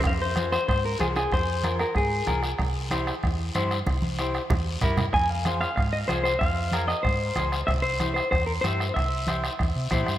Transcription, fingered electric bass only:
\new Staff \with { instrumentName = "Fingered electric bass" } { \clef bass \time 4/4 \key f \minor \tempo 4 = 188 f,2 aes,4 c,4 | f,2 aes,4 c,4 | c,2 e,4 g,4 | c,2 e,4 g,4 |
f,2 aes,4 c,4 | f,2 aes,4 des,4 | c,2 e,4 g,4 | c,2 e,8 c8 bes,8 g,8 | }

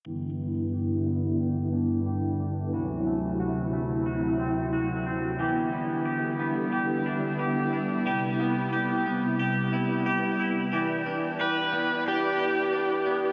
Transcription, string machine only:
\new Staff \with { instrumentName = "String machine" } { \time 4/4 \key g \major \tempo 4 = 90 << { <d b e'>1 | <c fis e'>1 | <g b e'>1~ | <g b e'>1 |
<b' d'' g''>1 | } \\ { g,1 | d,1 | d1 | c1 |
e'1 | } >> }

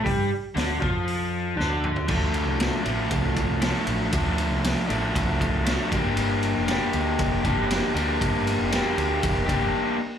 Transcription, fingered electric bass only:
\new Staff \with { instrumentName = "Fingered electric bass" } { \clef bass \time 4/4 \key d \minor \tempo 4 = 118 g,8 r8 d,8 f,4. d,4 | d,8. c,8 r16 a,,8 c,8. c,8 r16 a,,8 | d,8. c,8 r16 a,,8 c,8. c,8 r16 g,,8 | g,,8. f,,8 r16 d,8 f,,8. f,,8 r16 d,8 |
g,,8. f,,8 r16 d,8 f,,8. f,,16 r4 | }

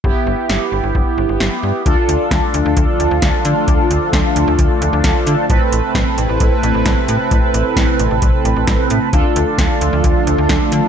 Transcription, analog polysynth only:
\new Staff \with { instrumentName = "Analog polysynth" } { \time 4/4 \key d \dorian \tempo 4 = 132 <b e' g'>1 | <d' f' a'>1~ | <d' f' a'>1 | <c' a' b'>1~ |
<c' a' b'>1 | <d' f' a'>1 | }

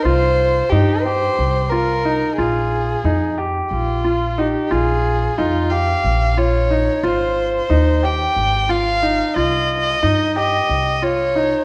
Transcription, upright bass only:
\new Staff \with { instrumentName = "Upright bass" } { \clef bass \time 7/8 \key bes \dorian \tempo 4 = 90 c,4 g,4 c,4. | bes,,4 f,4 bes,,4. | bes,,4 f,4 bes,,4. | aes,,4 ees,4 aes,,4. |
c,4 g,4 c,4. | }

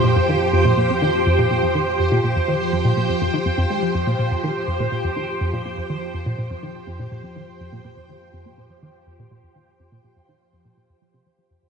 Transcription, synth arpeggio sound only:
\new Staff \with { instrumentName = "Synth arpeggio sound" } { \clef bass \time 4/4 \key c \phrygian \tempo 4 = 123 bes,16 f,16 ees16 r16 f,16 bes,16 bes,16 f,16 ees16 r16 f,16 bes,16 bes,16 f,16 ees16 r16 | f,16 bes,16 bes,16 f,16 ees16 r16 f,16 bes,16 bes,16 f,16 f,16 ees16 f,16 f,16 aes16 f16 | f,16 bes,16 bes,16 f,16 ees16 r16 f,16 bes,16 bes,16 f,16 ees16 r16 f,16 bes,16 bes,16 f,16 | ees16 r16 f,16 bes,16 bes,16 f,16 ees16 r16 f,16 bes,16 bes,16 f,16 ees16 r16 f,16 bes,16 |
bes,16 f,16 ees16 r16 f,16 bes,16 bes,16 f,16 ees16 r16 f,16 bes,16 bes,16 f,16 ees16 r16 | f,16 bes,16 bes,16 f,16 ees16 r16 f,16 bes,16 bes,16 f,16 f16 c16 f16 f16 f,16 f,16 | }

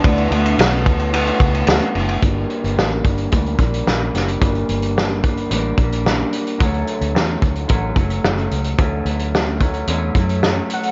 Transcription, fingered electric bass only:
\new Staff \with { instrumentName = "Fingered electric bass" } { \clef bass \time 4/4 \key g \lydian \tempo 4 = 110 d,8 d,8 b,,8 d,4 cis,8 d,16 r16 fis,,8 | g,,8 r16 g,,16 a,,8 g,,8 d,8 bes,,8 bes,,8 fis,,8 | g,,8 g,,4. a,,8 bes,,4 r8 | d,8 r16 d,16 e,8 d,8 a,,8 fis,,8 fis,,8 cis,8 |
d,8 d,4. e,8 fis,4 r8 | }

